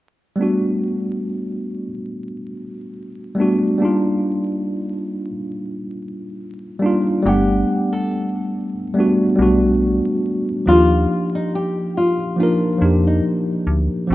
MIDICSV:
0, 0, Header, 1, 4, 480
1, 0, Start_track
1, 0, Tempo, 857143
1, 220, Time_signature, 4, 2, 24, 8
1, 7923, End_track
2, 0, Start_track
2, 0, Title_t, "Nylon-string guitar"
2, 0, Program_c, 0, 24
2, 4067, Note_on_c, 0, 67, 103
2, 4439, Note_off_c, 0, 67, 0
2, 4439, Note_on_c, 0, 69, 77
2, 5133, Note_off_c, 0, 69, 0
2, 5983, Note_on_c, 0, 65, 112
2, 6331, Note_off_c, 0, 65, 0
2, 6357, Note_on_c, 0, 63, 67
2, 6451, Note_off_c, 0, 63, 0
2, 6469, Note_on_c, 0, 67, 74
2, 6682, Note_off_c, 0, 67, 0
2, 6705, Note_on_c, 0, 65, 73
2, 6920, Note_off_c, 0, 65, 0
2, 6943, Note_on_c, 0, 65, 64
2, 7291, Note_off_c, 0, 65, 0
2, 7320, Note_on_c, 0, 63, 55
2, 7414, Note_off_c, 0, 63, 0
2, 7923, End_track
3, 0, Start_track
3, 0, Title_t, "Tine electric piano"
3, 0, Program_c, 1, 4
3, 200, Note_on_c, 1, 55, 75
3, 209, Note_on_c, 1, 57, 62
3, 220, Note_on_c, 1, 59, 60
3, 229, Note_on_c, 1, 62, 71
3, 237, Note_on_c, 1, 66, 81
3, 337, Control_c, 1, 64, 127
3, 1040, Note_off_c, 1, 55, 0
3, 1045, Note_off_c, 1, 57, 0
3, 1050, Note_off_c, 1, 59, 0
3, 1054, Note_off_c, 1, 62, 0
3, 1059, Note_off_c, 1, 66, 0
3, 1876, Note_on_c, 1, 55, 76
3, 1884, Note_on_c, 1, 57, 78
3, 1894, Note_on_c, 1, 59, 70
3, 1903, Note_on_c, 1, 62, 80
3, 1912, Note_on_c, 1, 66, 89
3, 2096, Note_off_c, 1, 55, 0
3, 2100, Note_off_c, 1, 57, 0
3, 2105, Note_off_c, 1, 59, 0
3, 2110, Note_off_c, 1, 62, 0
3, 2114, Note_off_c, 1, 66, 0
3, 2119, Note_on_c, 1, 55, 70
3, 2127, Note_on_c, 1, 58, 75
3, 2138, Note_on_c, 1, 62, 71
3, 2146, Note_on_c, 1, 63, 71
3, 2147, Control_c, 1, 64, 0
3, 2155, Note_on_c, 1, 65, 81
3, 2259, Control_c, 1, 64, 127
3, 2959, Note_off_c, 1, 55, 0
3, 2964, Note_off_c, 1, 58, 0
3, 2969, Note_off_c, 1, 62, 0
3, 2973, Note_off_c, 1, 63, 0
3, 2977, Note_off_c, 1, 65, 0
3, 3804, Note_on_c, 1, 55, 81
3, 3814, Note_on_c, 1, 58, 72
3, 3821, Note_on_c, 1, 62, 75
3, 3831, Note_on_c, 1, 63, 68
3, 3841, Note_on_c, 1, 65, 86
3, 4020, Note_off_c, 1, 55, 0
3, 4025, Note_off_c, 1, 58, 0
3, 4029, Note_off_c, 1, 62, 0
3, 4034, Note_off_c, 1, 63, 0
3, 4039, Note_off_c, 1, 65, 0
3, 4046, Note_on_c, 1, 55, 76
3, 4054, Note_on_c, 1, 57, 67
3, 4065, Note_on_c, 1, 59, 66
3, 4067, Control_c, 1, 64, 0
3, 4071, Note_on_c, 1, 62, 57
3, 4082, Note_on_c, 1, 78, 75
3, 4172, Control_c, 1, 64, 127
3, 4883, Note_off_c, 1, 55, 0
3, 4887, Note_off_c, 1, 57, 0
3, 4892, Note_off_c, 1, 59, 0
3, 4895, Note_off_c, 1, 62, 0
3, 4901, Note_off_c, 1, 78, 0
3, 5004, Note_on_c, 1, 55, 80
3, 5012, Note_on_c, 1, 57, 79
3, 5022, Note_on_c, 1, 59, 71
3, 5032, Note_on_c, 1, 62, 66
3, 5040, Note_on_c, 1, 66, 90
3, 5221, Note_off_c, 1, 55, 0
3, 5224, Note_off_c, 1, 57, 0
3, 5229, Note_off_c, 1, 59, 0
3, 5235, Note_off_c, 1, 62, 0
3, 5239, Note_off_c, 1, 66, 0
3, 5239, Note_on_c, 1, 55, 72
3, 5250, Note_on_c, 1, 57, 61
3, 5258, Note_on_c, 1, 59, 64
3, 5268, Note_on_c, 1, 62, 67
3, 5276, Note_on_c, 1, 66, 87
3, 5875, Note_off_c, 1, 55, 0
3, 5880, Note_off_c, 1, 57, 0
3, 5884, Note_off_c, 1, 59, 0
3, 5889, Note_off_c, 1, 62, 0
3, 5894, Note_off_c, 1, 66, 0
3, 5968, Note_on_c, 1, 53, 68
3, 5977, Note_on_c, 1, 58, 56
3, 5986, Note_on_c, 1, 62, 54
3, 5988, Control_c, 1, 64, 0
3, 5996, Note_on_c, 1, 63, 63
3, 6004, Note_on_c, 1, 67, 78
3, 6093, Control_c, 1, 64, 127
3, 6804, Note_off_c, 1, 53, 0
3, 6808, Note_off_c, 1, 58, 0
3, 6813, Note_off_c, 1, 62, 0
3, 6818, Note_off_c, 1, 63, 0
3, 6822, Note_off_c, 1, 67, 0
3, 6925, Note_on_c, 1, 53, 64
3, 6933, Note_on_c, 1, 58, 65
3, 6942, Note_on_c, 1, 62, 61
3, 6951, Note_on_c, 1, 63, 57
3, 6961, Note_on_c, 1, 70, 75
3, 7141, Note_off_c, 1, 53, 0
3, 7145, Note_off_c, 1, 58, 0
3, 7149, Note_off_c, 1, 62, 0
3, 7154, Note_off_c, 1, 63, 0
3, 7156, Note_on_c, 1, 53, 66
3, 7159, Note_off_c, 1, 70, 0
3, 7165, Note_on_c, 1, 58, 59
3, 7175, Note_on_c, 1, 62, 60
3, 7186, Note_on_c, 1, 63, 49
3, 7195, Note_on_c, 1, 67, 64
3, 7794, Note_off_c, 1, 53, 0
3, 7798, Note_off_c, 1, 58, 0
3, 7803, Note_off_c, 1, 62, 0
3, 7808, Note_off_c, 1, 63, 0
3, 7813, Note_off_c, 1, 67, 0
3, 7880, Note_on_c, 1, 53, 66
3, 7890, Note_on_c, 1, 58, 63
3, 7899, Note_on_c, 1, 60, 68
3, 7907, Control_c, 1, 64, 0
3, 7923, Note_off_c, 1, 53, 0
3, 7923, Note_off_c, 1, 58, 0
3, 7923, Note_off_c, 1, 60, 0
3, 7923, End_track
4, 0, Start_track
4, 0, Title_t, "FM bass"
4, 0, Program_c, 2, 39
4, 4063, Note_on_c, 2, 31, 109
4, 4280, Note_off_c, 2, 31, 0
4, 5257, Note_on_c, 2, 35, 87
4, 5608, Note_off_c, 2, 35, 0
4, 5976, Note_on_c, 2, 39, 99
4, 6197, Note_off_c, 2, 39, 0
4, 7177, Note_on_c, 2, 41, 93
4, 7398, Note_off_c, 2, 41, 0
4, 7654, Note_on_c, 2, 38, 95
4, 7777, Note_off_c, 2, 38, 0
4, 7898, Note_on_c, 2, 34, 109
4, 7923, Note_off_c, 2, 34, 0
4, 7923, End_track
0, 0, End_of_file